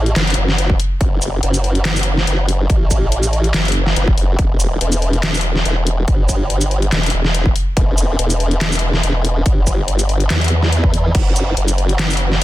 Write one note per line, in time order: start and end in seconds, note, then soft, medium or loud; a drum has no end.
0.00 0.15 A1 medium
0.06 closed hi-hat soft
0.16 0.36 F#1 medium
0.16 snare loud
0.16 clap medium
0.16 closed hi-hat medium
0.27 closed hi-hat soft
0.30 closed hi-hat medium
0.34 0.78 F#1 medium
0.34 closed hi-hat medium
0.48 snare soft
0.58 closed hi-hat medium
0.70 kick medium
0.80 open hi-hat medium
1.01 1.41 F#1 loud
1.01 kick loud
1.01 closed hi-hat medium
1.22 closed hi-hat soft
1.22 shaker medium
1.43 2.26 F#1 loud
1.43 closed hi-hat medium
1.54 closed hi-hat medium
1.54 shaker soft
1.64 open hi-hat medium
1.75 closed hi-hat soft
1.85 snare loud
1.85 clap medium
1.85 closed hi-hat medium
1.96 closed hi-hat soft
1.96 shaker medium
1.99 closed hi-hat medium
2.03 closed hi-hat medium
2.17 snare soft
2.27 2.68 F#1 loud
2.27 closed hi-hat medium
2.49 open hi-hat medium
2.70 3.53 A1 medium
2.70 kick loud
2.70 closed hi-hat medium
2.91 kick medium
2.91 closed hi-hat medium
2.91 shaker medium
3.12 closed hi-hat medium
3.23 closed hi-hat soft
3.23 shaker medium
3.33 open hi-hat medium
3.44 closed hi-hat soft
3.54 3.95 F#1 loud
3.54 snare loud
3.54 clap medium
3.54 closed hi-hat medium
3.65 closed hi-hat soft
3.68 closed hi-hat medium
3.72 closed hi-hat medium
3.86 snare soft
3.96 4.16 F#1 loud
3.96 closed hi-hat medium
4.08 kick medium
4.18 4.37 F#1 loud
4.18 open hi-hat medium
4.39 4.79 E1 loud
4.39 kick loud
4.39 closed hi-hat medium
4.60 closed hi-hat soft
4.60 shaker medium
4.81 5.64 E1 loud
4.81 closed hi-hat medium
4.92 closed hi-hat medium
4.92 shaker medium
5.02 open hi-hat medium
5.13 closed hi-hat soft
5.23 snare loud
5.23 clap medium
5.23 closed hi-hat medium
5.34 closed hi-hat soft
5.34 shaker medium
5.37 closed hi-hat medium
5.41 closed hi-hat medium
5.56 snare soft
5.65 6.06 E1 loud
5.65 closed hi-hat medium
5.87 open hi-hat medium
6.08 6.91 G1 medium
6.08 kick loud
6.08 closed hi-hat medium
6.29 kick medium
6.29 closed hi-hat medium
6.29 shaker medium
6.50 closed hi-hat medium
6.61 closed hi-hat medium
6.61 shaker medium
6.71 open hi-hat medium
6.82 closed hi-hat soft
6.92 7.12 E1 loud
6.92 snare loud
6.92 clap medium
6.92 closed hi-hat medium
7.03 closed hi-hat soft
7.06 closed hi-hat medium
7.10 7.54 E1 loud
7.10 closed hi-hat medium
7.25 snare soft
7.34 closed hi-hat medium
7.46 kick medium
7.56 open hi-hat medium
7.77 8.17 E1 medium
7.77 kick loud
7.77 closed hi-hat medium
7.98 closed hi-hat medium
7.98 shaker medium
8.19 9.02 E1 loud
8.19 closed hi-hat medium
8.30 closed hi-hat medium
8.30 shaker medium
8.40 open hi-hat medium
8.51 closed hi-hat soft
8.61 snare loud
8.61 clap medium
8.61 closed hi-hat medium
8.72 closed hi-hat soft
8.72 shaker medium
8.75 closed hi-hat medium
8.79 closed hi-hat medium
8.94 snare soft
9.03 9.44 E1 loud
9.03 closed hi-hat medium
9.25 open hi-hat medium
9.46 10.29 G1 medium
9.46 kick loud
9.46 closed hi-hat medium
9.67 kick medium
9.67 closed hi-hat medium
9.67 shaker medium
9.88 closed hi-hat medium
9.99 closed hi-hat medium
9.99 shaker medium
10.09 open hi-hat medium
10.20 closed hi-hat soft
10.30 11.13 E2 loud
10.30 snare loud
10.30 clap medium
10.30 closed hi-hat medium
10.41 closed hi-hat medium
10.44 closed hi-hat medium
10.48 closed hi-hat medium
10.63 snare soft
10.72 closed hi-hat medium
10.84 kick medium
10.94 open hi-hat loud
11.15 11.55 F#1 loud
11.15 kick loud
11.15 closed hi-hat medium
11.15 crash medium
11.36 closed hi-hat medium
11.36 shaker medium
11.57 12.40 F#1 loud
11.57 closed hi-hat medium
11.68 closed hi-hat medium
11.68 shaker medium
11.78 open hi-hat medium
11.89 closed hi-hat soft
11.99 snare loud
11.99 clap medium
11.99 closed hi-hat medium
12.10 closed hi-hat soft
12.10 shaker medium
12.13 closed hi-hat medium
12.17 closed hi-hat medium
12.32 snare soft